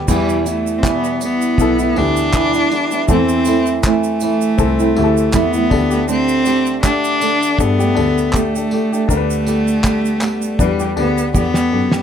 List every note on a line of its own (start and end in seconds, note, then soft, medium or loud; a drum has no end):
0.00 0.10 G4 medium
0.07 0.45 E2 medium
0.07 1.54 E2 loud
0.07 0.46 B2 medium
0.07 0.43 E3 medium
0.07 0.44 G3 medium
0.07 1.51 B3 medium
0.07 0.45 B3 medium
0.07 0.46 E4 medium
0.07 1.52 E4 medium
0.07 1.53 G4 medium
0.07 kick loud
0.07 crash loud
0.07 shaker medium
0.29 shaker medium
0.44 0.82 E3 medium
0.44 0.82 G3 medium
0.44 0.82 B3 medium
0.44 0.83 E4 medium
0.44 tambourine medium
0.44 shaker medium
0.48 0.80 A3 medium
0.67 shaker medium
0.78 0.88 C4 medium
0.82 1.20 E2 medium
0.82 1.21 B2 medium
0.82 1.20 E3 medium
0.82 1.21 G3 medium
0.82 1.21 B3 medium
0.82 1.22 B3 medium
0.82 1.21 E4 medium
0.82 kick loud
0.82 clap loud
0.82 shaker medium
1.04 shaker soft
1.21 1.79 E3 medium
1.21 1.79 G3 medium
1.21 1.78 B3 medium
1.21 2.00 B3 medium
1.21 1.78 E4 medium
1.21 tambourine medium
1.21 shaker medium
1.42 shaker medium
1.58 1.89 B1 medium
1.58 1.94 B3 medium
1.58 1.95 E4 medium
1.58 1.96 A4 medium
1.58 kick loud
1.58 shaker medium
1.79 1.95 E3 soft
1.79 1.96 G3 soft
1.79 1.96 B3 soft
1.79 1.96 E4 medium
1.79 shaker soft
1.96 2.58 D2 medium
1.96 2.33 E3 medium
1.96 2.33 G3 medium
1.96 3.03 B3 medium
1.96 2.34 B3 medium
1.96 3.10 D4 loud
1.96 3.04 E4 medium
1.96 2.34 E4 medium
1.96 3.04 G4 medium
1.96 tambourine medium
2.17 shaker soft
2.33 2.54 E2 medium
2.33 2.54 B2 medium
2.33 2.54 E3 medium
2.33 2.54 G3 medium
2.33 2.53 B3 medium
2.33 2.52 E4 loud
2.33 kick loud
2.33 clap loud
2.33 shaker medium
2.54 2.70 E3 soft
2.54 2.70 G3 soft
2.54 2.71 B3 soft
2.54 2.71 E4 soft
2.54 shaker soft
2.71 2.92 E3 medium
2.71 2.92 G3 medium
2.71 2.91 B3 medium
2.71 2.91 E4 medium
2.71 tambourine medium
2.91 3.07 E3 soft
2.91 3.09 G3 medium
2.91 3.09 B3 medium
2.91 3.09 E4 medium
2.91 shaker soft
3.08 4.55 E2 loud
3.08 3.45 E3 medium
3.08 3.46 A3 medium
3.08 4.51 C4 medium
3.08 3.46 C4 medium
3.08 3.81 C4 loud
3.08 4.52 E4 medium
3.08 3.47 E4 medium
3.08 4.52 A4 medium
3.08 kick loud
3.08 shaker medium
3.29 shaker medium
3.45 3.83 E3 medium
3.45 3.83 A3 medium
3.45 3.84 C4 medium
3.45 3.85 E4 medium
3.45 tambourine medium
3.45 shaker medium
3.66 shaker soft
3.83 4.21 E3 medium
3.83 5.36 A3 loud
3.83 4.22 A3 medium
3.83 4.22 C4 medium
3.83 4.22 E4 medium
3.83 kick loud
3.83 clap loud
3.83 shaker medium
4.04 shaker soft
4.20 4.80 E3 medium
4.20 4.80 A3 medium
4.20 4.79 C4 medium
4.20 4.78 E4 medium
4.20 tambourine medium
4.20 shaker medium
4.41 shaker soft
4.58 4.90 C2 medium
4.58 4.94 C4 medium
4.58 4.94 E4 medium
4.58 4.95 A4 medium
4.58 kick loud
4.58 shaker medium
4.79 4.95 A3 medium
4.79 4.96 C4 medium
4.79 4.96 E4 medium
4.79 shaker soft
4.95 5.27 D2 medium
4.95 5.33 E3 medium
4.95 5.71 A3 medium
4.95 5.32 A3 medium
4.95 5.33 C4 medium
4.95 5.71 E4 medium
4.95 5.33 E4 medium
4.95 5.04 G4 medium
4.95 tambourine medium
5.04 5.70 A4 medium
5.17 shaker medium
5.33 5.71 E2 medium
5.33 5.54 E3 medium
5.33 5.54 A3 medium
5.33 6.09 B3 loud
5.33 5.53 C4 medium
5.33 5.52 E4 medium
5.33 kick loud
5.33 clap medium
5.33 shaker medium
5.53 5.69 A3 soft
5.53 5.71 C4 soft
5.53 5.70 E4 medium
5.53 shaker soft
5.70 7.25 D2 medium
5.70 5.91 D3 medium
5.70 5.91 A3 medium
5.70 7.14 D4 medium
5.70 5.90 D4 medium
5.70 7.14 G4 medium
5.70 5.89 G4 medium
5.70 7.15 A4 medium
5.70 kick loud
5.70 tambourine medium
5.90 6.07 A3 soft
5.90 6.08 D4 soft
5.90 6.08 G4 medium
5.90 shaker soft
6.08 6.44 D3 medium
6.08 6.45 A3 medium
6.08 6.81 C4 loud
6.08 6.46 D4 medium
6.08 6.46 G4 medium
6.08 shaker medium
6.28 shaker medium
6.45 6.82 D3 medium
6.45 6.82 A3 medium
6.45 6.83 D4 medium
6.45 6.83 G4 medium
6.45 tambourine medium
6.45 shaker medium
6.66 shaker soft
6.83 7.20 D3 medium
6.83 7.20 A3 medium
6.83 7.62 D4 loud
6.83 7.22 D4 medium
6.83 7.22 G4 medium
6.83 kick loud
6.83 clap loud
6.83 shaker medium
7.04 shaker soft
7.21 7.79 D3 medium
7.21 7.80 A3 medium
7.21 7.79 D4 medium
7.21 7.78 G4 medium
7.21 tambourine medium
7.21 shaker medium
7.43 shaker soft
7.58 7.90 G2 loud
7.58 8.37 B3 loud
7.58 7.93 D4 medium
7.58 7.94 G4 medium
7.58 7.95 A4 medium
7.58 kick loud
7.58 shaker medium
7.79 7.95 A3 soft
7.79 7.96 D4 medium
7.79 7.96 G4 medium
7.79 shaker soft
7.95 8.58 D2 medium
7.95 8.32 D3 medium
7.95 8.32 A3 medium
7.95 9.03 D4 medium
7.95 8.33 D4 medium
7.95 9.03 G4 medium
7.95 8.33 G4 medium
7.95 9.04 A4 medium
7.95 tambourine medium
8.18 shaker soft
8.33 8.54 D3 medium
8.33 8.54 A3 medium
8.33 9.10 A3 medium
8.33 8.55 D4 medium
8.33 8.54 G4 medium
8.33 kick loud
8.33 clap loud
8.33 shaker medium
8.55 8.71 A3 soft
8.55 8.72 D4 soft
8.55 8.72 G4 soft
8.55 shaker soft
8.71 8.92 D3 medium
8.71 8.93 A3 medium
8.71 8.92 D4 medium
8.71 8.91 G4 medium
8.71 tambourine medium
8.92 9.10 A3 soft
8.92 9.10 D4 medium
8.92 9.09 G4 medium
8.92 shaker soft
9.08 10.55 D2 loud
9.08 9.45 D3 medium
9.08 9.46 G3 medium
9.08 10.63 A3 loud
9.08 9.46 B3 medium
9.08 10.51 D4 medium
9.08 10.52 G4 medium
9.08 9.47 G4 medium
9.08 9.17 A#4 medium
9.08 kick loud
9.08 shaker medium
9.16 10.56 B4 medium
9.30 shaker medium
9.46 9.83 D3 medium
9.46 9.83 G3 medium
9.46 9.84 B3 medium
9.46 9.84 G4 medium
9.46 tambourine medium
9.46 shaker medium
9.68 shaker soft
9.84 10.19 D3 medium
9.84 10.21 G3 medium
9.84 10.21 B3 medium
9.84 10.22 G4 medium
9.84 kick loud
9.84 clap loud
9.84 shaker medium
10.05 shaker soft
10.21 10.79 D3 medium
10.21 10.80 G3 medium
10.21 10.79 B3 medium
10.21 10.78 G4 medium
10.21 clap loud
10.21 tambourine medium
10.21 shaker soft
10.42 shaker soft
10.59 10.90 E2 medium
10.59 10.98 G3 medium
10.59 10.95 D4 medium
10.59 10.95 G4 medium
10.59 10.96 B4 medium
10.59 kick loud
10.59 shaker medium
10.80 10.96 G3 soft
10.80 10.97 B3 medium
10.80 10.97 G4 medium
10.80 shaker soft
10.96 11.28 D2 medium
10.96 11.32 D3 medium
10.96 11.33 G3 medium
10.96 11.33 B3 medium
10.96 12.03 D4 medium
10.96 12.03 G4 medium
10.96 11.34 G4 medium
10.96 12.03 B4 medium
10.96 tambourine medium
11.18 shaker medium
11.33 11.65 E2 medium
11.33 11.54 D3 medium
11.33 11.55 G3 medium
11.33 11.55 B3 medium
11.33 12.03 B3 loud
11.33 11.53 G4 medium
11.33 kick loud
11.33 shaker medium
11.54 11.71 G3 soft
11.54 11.72 B3 soft
11.54 11.71 G4 medium
11.54 snare medium
11.54 shaker soft
11.71 12.03 F#2 medium
11.71 11.92 D3 medium
11.71 11.93 G3 medium
11.71 11.93 B3 medium
11.71 11.91 G4 medium
11.91 12.03 G3 soft
11.91 12.03 B3 soft
11.91 12.03 G4 medium
11.91 snare medium
11.91 shaker soft